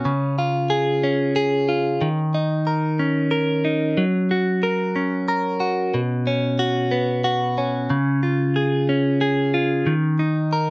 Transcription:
0.00 0.12 B3 soft
0.00 0.38 C#4 soft
0.00 0.11 F#4 medium
0.05 2.01 C#3 medium
0.38 1.67 F4 soft
0.70 1.35 G#4 medium
1.04 2.37 C#4 medium
1.36 2.08 G#4 medium
1.69 2.08 F4 soft
2.01 3.97 D#3 medium
2.34 3.63 D#4 soft
2.67 3.31 A#4 soft
2.99 4.95 C#4 medium
3.31 4.04 A#4 medium
3.65 4.04 D#4 soft
3.97 5.94 F#3 medium
4.31 5.60 F#4 medium
4.63 5.27 A#4 medium
4.96 6.27 C#4 medium
5.28 6.00 A#4 medium
5.60 6.00 F#4 soft
5.94 7.90 B2 medium
6.27 7.57 C#4 soft
6.59 7.23 F#4 medium
6.91 7.97 B3 medium
7.24 7.97 F#4 medium
7.58 8.23 C#4 soft
7.90 9.86 C#3 medium
8.23 9.53 F4 soft
8.56 9.20 G#4 medium
8.89 10.22 C#4 soft
9.21 9.94 G#4 medium
9.54 9.94 F4 soft
9.87 10.70 D#3 medium
10.19 10.70 D#4 soft
10.53 10.70 A#4 medium

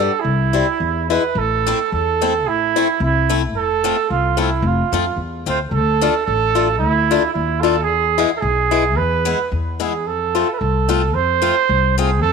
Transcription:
0.00 0.11 G3 soft
0.00 0.11 B3 soft
0.00 0.11 D4 medium
0.00 0.22 A4 medium
0.20 1.08 E4 medium
0.24 0.61 C2 medium
0.53 0.66 G3 medium
0.53 0.66 C4 medium
0.53 0.66 E4 medium
0.80 1.16 E2 medium
1.10 1.22 G#3 soft
1.10 1.22 B3 soft
1.10 1.22 E4 medium
1.10 1.40 B4 medium
1.35 1.71 A1 medium
1.35 1.92 A4 medium
1.67 1.78 A3 medium
1.67 1.78 C4 medium
1.67 1.78 E4 medium
1.92 2.47 E2 medium
1.92 2.49 A4 medium
2.22 2.32 A3 medium
2.22 2.33 C4 soft
2.22 2.32 E4 medium
2.47 2.82 A1 medium
2.47 3.01 E4 medium
2.76 2.87 A3 medium
2.76 2.87 C4 medium
2.76 2.87 E4 medium
3.00 3.56 C2 medium
3.00 3.40 E4 medium
3.29 3.41 A3 medium
3.29 3.41 C4 soft
3.29 3.41 E4 medium
3.56 3.91 F1 medium
3.56 4.06 A4 medium
3.84 3.95 A3 medium
3.84 3.95 C4 medium
3.84 3.95 F4 medium
4.10 4.64 C2 medium
4.10 4.41 F4 medium
4.37 4.49 A3 medium
4.37 4.49 C4 soft
4.37 4.69 E4 medium
4.37 4.49 F4 medium
4.62 4.81 F1 medium
4.67 5.20 F4 medium
4.92 5.15 F2 medium
4.92 5.04 A3 medium
4.92 5.04 C4 soft
4.92 5.04 F4 medium
5.16 5.43 E2 medium
5.46 5.71 D2 medium
5.46 5.58 A3 soft
5.46 5.58 C4 soft
5.46 5.58 F4 medium
5.46 5.60 C5 medium
5.71 6.07 D2 medium
5.71 6.23 A4 medium
6.01 6.13 A3 medium
6.01 6.13 D4 medium
6.01 6.13 F4 medium
6.26 6.82 A1 medium
6.26 6.77 A4 medium
6.55 6.67 A3 soft
6.55 6.67 D4 soft
6.55 6.67 F4 medium
6.79 7.17 D2 medium
6.79 7.30 E4 medium
7.11 7.22 A3 medium
7.11 7.22 D4 medium
7.11 7.22 F4 medium
7.34 7.88 D#2 medium
7.34 7.62 E4 medium
7.61 7.75 A3 soft
7.61 7.75 D4 medium
7.61 7.75 F4 medium
7.61 7.83 A4 medium
7.83 8.30 G#4 medium
7.88 8.24 E2 loud
8.18 8.29 G#3 medium
8.18 8.29 B3 medium
8.18 8.29 E4 medium
8.37 8.98 G#4 medium
8.37 8.42 A4 medium
8.42 8.97 B1 medium
8.71 8.83 G#3 medium
8.71 8.83 B3 soft
8.71 8.83 E4 medium
8.97 9.33 E2 medium
8.97 9.51 B4 medium
9.25 9.37 G#3 medium
9.25 9.37 B3 soft
9.25 9.38 E4 medium
9.52 10.06 E2 medium
9.80 9.92 G#3 soft
9.80 9.92 B3 soft
9.80 9.92 E4 soft
9.80 10.09 G#4 medium
10.06 10.42 F2 medium
10.06 10.52 A4 medium
10.35 10.47 A3 soft
10.35 10.47 C4 soft
10.35 10.47 F4 medium
10.53 10.61 B4 medium
10.59 11.15 C2 medium
10.59 11.16 A4 medium
10.89 11.01 A3 medium
10.89 11.01 C4 soft
10.89 11.01 F4 medium
11.15 11.50 F2 medium
11.15 11.98 C5 loud
11.42 11.54 A3 medium
11.42 11.54 C4 soft
11.42 11.55 F4 medium
11.69 12.23 C2 medium
11.98 12.09 A3 medium
11.98 12.09 C4 medium
11.98 12.10 F4 medium
11.98 12.21 G#4 medium
12.22 12.33 F2 medium
12.22 12.32 A4 loud

